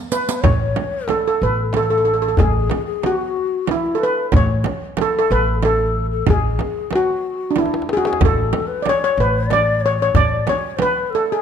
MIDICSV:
0, 0, Header, 1, 7, 480
1, 0, Start_track
1, 0, Tempo, 646552
1, 328, Time_signature, 3, 2, 24, 8
1, 8477, End_track
2, 0, Start_track
2, 0, Title_t, "Ney"
2, 0, Program_c, 0, 77
2, 70, Note_on_c, 0, 71, 67
2, 308, Note_on_c, 0, 73, 72
2, 319, Note_off_c, 0, 71, 0
2, 797, Note_on_c, 0, 69, 69
2, 808, Note_off_c, 0, 73, 0
2, 1269, Note_off_c, 0, 69, 0
2, 1274, Note_on_c, 0, 69, 70
2, 1760, Note_on_c, 0, 68, 76
2, 1771, Note_off_c, 0, 69, 0
2, 2117, Note_off_c, 0, 68, 0
2, 2122, Note_on_c, 0, 68, 74
2, 2248, Note_on_c, 0, 66, 77
2, 2260, Note_off_c, 0, 68, 0
2, 2722, Note_on_c, 0, 65, 63
2, 2733, Note_off_c, 0, 66, 0
2, 2749, Note_on_c, 0, 64, 68
2, 2756, Note_off_c, 0, 65, 0
2, 2957, Note_on_c, 0, 71, 70
2, 2968, Note_off_c, 0, 64, 0
2, 3195, Note_off_c, 0, 71, 0
2, 3199, Note_on_c, 0, 73, 75
2, 3467, Note_off_c, 0, 73, 0
2, 3689, Note_on_c, 0, 69, 76
2, 3801, Note_off_c, 0, 69, 0
2, 3805, Note_on_c, 0, 69, 79
2, 4146, Note_off_c, 0, 69, 0
2, 4170, Note_on_c, 0, 69, 79
2, 4508, Note_off_c, 0, 69, 0
2, 4532, Note_on_c, 0, 69, 73
2, 4654, Note_on_c, 0, 68, 70
2, 4665, Note_off_c, 0, 69, 0
2, 4708, Note_on_c, 0, 66, 59
2, 4719, Note_off_c, 0, 68, 0
2, 4756, Note_on_c, 0, 68, 75
2, 4767, Note_off_c, 0, 66, 0
2, 5135, Note_on_c, 0, 66, 70
2, 5146, Note_off_c, 0, 68, 0
2, 5609, Note_on_c, 0, 64, 70
2, 5620, Note_off_c, 0, 66, 0
2, 5847, Note_off_c, 0, 64, 0
2, 5851, Note_on_c, 0, 68, 71
2, 5942, Note_off_c, 0, 68, 0
2, 5947, Note_on_c, 0, 68, 68
2, 6084, Note_on_c, 0, 69, 77
2, 6095, Note_off_c, 0, 68, 0
2, 6441, Note_on_c, 0, 71, 79
2, 6452, Note_off_c, 0, 69, 0
2, 6568, Note_on_c, 0, 73, 84
2, 6579, Note_off_c, 0, 71, 0
2, 6810, Note_on_c, 0, 71, 75
2, 6821, Note_off_c, 0, 73, 0
2, 7030, Note_on_c, 0, 74, 84
2, 7042, Note_off_c, 0, 71, 0
2, 7281, Note_on_c, 0, 73, 80
2, 7293, Note_off_c, 0, 74, 0
2, 7397, Note_off_c, 0, 73, 0
2, 7401, Note_on_c, 0, 73, 78
2, 7519, Note_off_c, 0, 73, 0
2, 7529, Note_on_c, 0, 74, 80
2, 7578, Note_on_c, 0, 73, 69
2, 7589, Note_off_c, 0, 74, 0
2, 7636, Note_on_c, 0, 74, 78
2, 7647, Note_off_c, 0, 73, 0
2, 7716, Note_off_c, 0, 74, 0
2, 7716, Note_on_c, 0, 74, 57
2, 7771, Note_off_c, 0, 74, 0
2, 7771, Note_on_c, 0, 74, 74
2, 7803, Note_on_c, 0, 73, 81
2, 7810, Note_off_c, 0, 74, 0
2, 7949, Note_off_c, 0, 73, 0
2, 7949, Note_on_c, 0, 73, 60
2, 7999, Note_on_c, 0, 71, 80
2, 8010, Note_off_c, 0, 73, 0
2, 8213, Note_off_c, 0, 71, 0
2, 8213, Note_on_c, 0, 71, 55
2, 8240, Note_on_c, 0, 69, 70
2, 8252, Note_off_c, 0, 71, 0
2, 8364, Note_on_c, 0, 68, 69
2, 8376, Note_off_c, 0, 69, 0
2, 8477, Note_off_c, 0, 68, 0
2, 8477, End_track
3, 0, Start_track
3, 0, Title_t, "Steel pan"
3, 0, Program_c, 1, 114
3, 89, Note_on_c, 1, 71, 76
3, 327, Note_on_c, 1, 73, 81
3, 336, Note_off_c, 1, 71, 0
3, 817, Note_on_c, 1, 69, 76
3, 824, Note_off_c, 1, 73, 0
3, 938, Note_off_c, 1, 69, 0
3, 947, Note_on_c, 1, 69, 73
3, 1062, Note_off_c, 1, 69, 0
3, 1063, Note_on_c, 1, 71, 74
3, 1281, Note_off_c, 1, 71, 0
3, 1311, Note_on_c, 1, 69, 78
3, 1347, Note_off_c, 1, 69, 0
3, 1356, Note_on_c, 1, 69, 51
3, 1405, Note_off_c, 1, 69, 0
3, 1414, Note_on_c, 1, 69, 65
3, 1458, Note_off_c, 1, 69, 0
3, 1467, Note_on_c, 1, 69, 57
3, 1514, Note_off_c, 1, 69, 0
3, 1523, Note_on_c, 1, 69, 63
3, 1576, Note_off_c, 1, 69, 0
3, 1586, Note_on_c, 1, 69, 56
3, 1636, Note_off_c, 1, 69, 0
3, 1648, Note_on_c, 1, 69, 64
3, 1686, Note_off_c, 1, 69, 0
3, 1695, Note_on_c, 1, 69, 58
3, 1746, Note_off_c, 1, 69, 0
3, 1781, Note_on_c, 1, 68, 85
3, 2273, Note_off_c, 1, 68, 0
3, 2273, Note_on_c, 1, 66, 76
3, 2756, Note_on_c, 1, 64, 78
3, 2759, Note_off_c, 1, 66, 0
3, 2932, Note_on_c, 1, 69, 63
3, 2939, Note_off_c, 1, 64, 0
3, 2980, Note_off_c, 1, 69, 0
3, 2995, Note_on_c, 1, 71, 83
3, 3233, Note_off_c, 1, 71, 0
3, 3241, Note_on_c, 1, 73, 94
3, 3723, Note_off_c, 1, 73, 0
3, 3723, Note_on_c, 1, 69, 83
3, 3822, Note_off_c, 1, 69, 0
3, 3850, Note_on_c, 1, 69, 84
3, 3947, Note_on_c, 1, 71, 88
3, 3957, Note_off_c, 1, 69, 0
3, 4189, Note_off_c, 1, 71, 0
3, 4194, Note_on_c, 1, 69, 79
3, 4679, Note_on_c, 1, 68, 85
3, 4680, Note_off_c, 1, 69, 0
3, 5162, Note_off_c, 1, 68, 0
3, 5164, Note_on_c, 1, 66, 79
3, 5549, Note_off_c, 1, 66, 0
3, 5572, Note_on_c, 1, 62, 58
3, 5621, Note_off_c, 1, 62, 0
3, 5629, Note_on_c, 1, 64, 71
3, 5870, Note_off_c, 1, 64, 0
3, 5888, Note_on_c, 1, 68, 76
3, 5918, Note_on_c, 1, 66, 69
3, 5926, Note_off_c, 1, 68, 0
3, 5966, Note_off_c, 1, 66, 0
3, 5990, Note_on_c, 1, 68, 79
3, 6115, Note_off_c, 1, 68, 0
3, 6125, Note_on_c, 1, 69, 92
3, 6551, Note_on_c, 1, 74, 64
3, 6573, Note_off_c, 1, 69, 0
3, 6579, Note_off_c, 1, 74, 0
3, 6602, Note_on_c, 1, 73, 93
3, 6703, Note_off_c, 1, 73, 0
3, 6712, Note_on_c, 1, 73, 89
3, 6827, Note_off_c, 1, 73, 0
3, 6833, Note_on_c, 1, 71, 80
3, 7071, Note_off_c, 1, 71, 0
3, 7074, Note_on_c, 1, 74, 93
3, 7311, Note_off_c, 1, 74, 0
3, 7318, Note_on_c, 1, 73, 90
3, 7429, Note_off_c, 1, 73, 0
3, 7441, Note_on_c, 1, 73, 85
3, 7545, Note_on_c, 1, 74, 99
3, 7550, Note_off_c, 1, 73, 0
3, 7786, Note_off_c, 1, 74, 0
3, 7790, Note_on_c, 1, 73, 87
3, 8028, Note_off_c, 1, 73, 0
3, 8032, Note_on_c, 1, 71, 92
3, 8268, Note_off_c, 1, 71, 0
3, 8277, Note_on_c, 1, 69, 84
3, 8387, Note_off_c, 1, 69, 0
3, 8405, Note_on_c, 1, 68, 76
3, 8477, Note_off_c, 1, 68, 0
3, 8477, End_track
4, 0, Start_track
4, 0, Title_t, "Upright bass"
4, 0, Program_c, 2, 32
4, 330, Note_on_c, 2, 33, 89
4, 548, Note_off_c, 2, 33, 0
4, 1051, Note_on_c, 2, 33, 76
4, 1743, Note_off_c, 2, 33, 0
4, 1778, Note_on_c, 2, 33, 84
4, 1994, Note_off_c, 2, 33, 0
4, 3217, Note_on_c, 2, 33, 90
4, 3435, Note_off_c, 2, 33, 0
4, 3939, Note_on_c, 2, 33, 78
4, 4629, Note_off_c, 2, 33, 0
4, 4666, Note_on_c, 2, 33, 81
4, 4880, Note_off_c, 2, 33, 0
4, 6095, Note_on_c, 2, 33, 91
4, 6313, Note_off_c, 2, 33, 0
4, 6812, Note_on_c, 2, 33, 82
4, 7502, Note_off_c, 2, 33, 0
4, 7532, Note_on_c, 2, 33, 79
4, 7750, Note_off_c, 2, 33, 0
4, 8477, End_track
5, 0, Start_track
5, 0, Title_t, "Frame drum"
5, 324, Note_on_c, 9, 64, 92
5, 398, Note_off_c, 9, 64, 0
5, 566, Note_on_c, 9, 64, 69
5, 640, Note_off_c, 9, 64, 0
5, 807, Note_on_c, 9, 64, 66
5, 881, Note_off_c, 9, 64, 0
5, 1291, Note_on_c, 9, 64, 70
5, 1365, Note_off_c, 9, 64, 0
5, 1771, Note_on_c, 9, 64, 75
5, 1845, Note_off_c, 9, 64, 0
5, 2012, Note_on_c, 9, 64, 69
5, 2087, Note_off_c, 9, 64, 0
5, 2253, Note_on_c, 9, 64, 68
5, 2327, Note_off_c, 9, 64, 0
5, 2728, Note_on_c, 9, 64, 73
5, 2802, Note_off_c, 9, 64, 0
5, 3207, Note_on_c, 9, 64, 91
5, 3281, Note_off_c, 9, 64, 0
5, 3446, Note_on_c, 9, 64, 71
5, 3520, Note_off_c, 9, 64, 0
5, 3689, Note_on_c, 9, 64, 74
5, 3763, Note_off_c, 9, 64, 0
5, 4176, Note_on_c, 9, 64, 66
5, 4251, Note_off_c, 9, 64, 0
5, 4652, Note_on_c, 9, 64, 86
5, 4726, Note_off_c, 9, 64, 0
5, 4892, Note_on_c, 9, 64, 59
5, 4967, Note_off_c, 9, 64, 0
5, 5127, Note_on_c, 9, 64, 59
5, 5201, Note_off_c, 9, 64, 0
5, 5610, Note_on_c, 9, 64, 67
5, 5685, Note_off_c, 9, 64, 0
5, 6094, Note_on_c, 9, 64, 88
5, 6168, Note_off_c, 9, 64, 0
5, 6331, Note_on_c, 9, 64, 73
5, 6406, Note_off_c, 9, 64, 0
5, 6575, Note_on_c, 9, 64, 65
5, 6649, Note_off_c, 9, 64, 0
5, 7060, Note_on_c, 9, 64, 67
5, 7134, Note_off_c, 9, 64, 0
5, 7533, Note_on_c, 9, 64, 78
5, 7607, Note_off_c, 9, 64, 0
5, 7776, Note_on_c, 9, 64, 70
5, 7850, Note_off_c, 9, 64, 0
5, 8007, Note_on_c, 9, 64, 74
5, 8082, Note_off_c, 9, 64, 0
5, 8477, End_track
6, 0, Start_track
6, 0, Title_t, "Riq"
6, 87, Note_on_c, 9, 54, 67
6, 161, Note_off_c, 9, 54, 0
6, 213, Note_on_c, 9, 54, 78
6, 287, Note_off_c, 9, 54, 0
6, 8477, End_track
7, 0, Start_track
7, 0, Title_t, "Tombak"
7, 86, Note_on_c, 9, 62, 25
7, 161, Note_off_c, 9, 62, 0
7, 325, Note_on_c, 9, 64, 77
7, 399, Note_off_c, 9, 64, 0
7, 565, Note_on_c, 9, 63, 63
7, 639, Note_off_c, 9, 63, 0
7, 800, Note_on_c, 9, 63, 66
7, 874, Note_off_c, 9, 63, 0
7, 1044, Note_on_c, 9, 62, 21
7, 1118, Note_off_c, 9, 62, 0
7, 1283, Note_on_c, 9, 63, 64
7, 1357, Note_off_c, 9, 63, 0
7, 1403, Note_on_c, 9, 62, 22
7, 1477, Note_off_c, 9, 62, 0
7, 1760, Note_on_c, 9, 64, 78
7, 1835, Note_off_c, 9, 64, 0
7, 2002, Note_on_c, 9, 63, 59
7, 2076, Note_off_c, 9, 63, 0
7, 2255, Note_on_c, 9, 63, 66
7, 2329, Note_off_c, 9, 63, 0
7, 2499, Note_on_c, 9, 62, 24
7, 2573, Note_off_c, 9, 62, 0
7, 2739, Note_on_c, 9, 63, 63
7, 2813, Note_off_c, 9, 63, 0
7, 2866, Note_on_c, 9, 62, 25
7, 2940, Note_off_c, 9, 62, 0
7, 3219, Note_on_c, 9, 64, 83
7, 3293, Note_off_c, 9, 64, 0
7, 3459, Note_on_c, 9, 63, 67
7, 3534, Note_off_c, 9, 63, 0
7, 3700, Note_on_c, 9, 63, 68
7, 3775, Note_off_c, 9, 63, 0
7, 4181, Note_on_c, 9, 63, 72
7, 4255, Note_off_c, 9, 63, 0
7, 4303, Note_on_c, 9, 62, 26
7, 4377, Note_off_c, 9, 62, 0
7, 4659, Note_on_c, 9, 64, 74
7, 4733, Note_off_c, 9, 64, 0
7, 4904, Note_on_c, 9, 63, 63
7, 4979, Note_off_c, 9, 63, 0
7, 5143, Note_on_c, 9, 63, 70
7, 5217, Note_off_c, 9, 63, 0
7, 5619, Note_on_c, 9, 63, 49
7, 5683, Note_on_c, 9, 62, 58
7, 5694, Note_off_c, 9, 63, 0
7, 5745, Note_on_c, 9, 63, 62
7, 5758, Note_off_c, 9, 62, 0
7, 5805, Note_on_c, 9, 62, 63
7, 5820, Note_off_c, 9, 63, 0
7, 5858, Note_on_c, 9, 63, 68
7, 5879, Note_off_c, 9, 62, 0
7, 5916, Note_on_c, 9, 62, 68
7, 5933, Note_off_c, 9, 63, 0
7, 5977, Note_on_c, 9, 63, 79
7, 5990, Note_off_c, 9, 62, 0
7, 6034, Note_on_c, 9, 62, 87
7, 6051, Note_off_c, 9, 63, 0
7, 6096, Note_on_c, 9, 64, 83
7, 6108, Note_off_c, 9, 62, 0
7, 6170, Note_off_c, 9, 64, 0
7, 6336, Note_on_c, 9, 63, 61
7, 6410, Note_off_c, 9, 63, 0
7, 6580, Note_on_c, 9, 63, 61
7, 6655, Note_off_c, 9, 63, 0
7, 6816, Note_on_c, 9, 62, 24
7, 6890, Note_off_c, 9, 62, 0
7, 7055, Note_on_c, 9, 63, 63
7, 7130, Note_off_c, 9, 63, 0
7, 7174, Note_on_c, 9, 62, 23
7, 7249, Note_off_c, 9, 62, 0
7, 7532, Note_on_c, 9, 64, 81
7, 7606, Note_off_c, 9, 64, 0
7, 7771, Note_on_c, 9, 63, 67
7, 7846, Note_off_c, 9, 63, 0
7, 8015, Note_on_c, 9, 63, 62
7, 8089, Note_off_c, 9, 63, 0
7, 8259, Note_on_c, 9, 62, 24
7, 8334, Note_off_c, 9, 62, 0
7, 8477, End_track
0, 0, End_of_file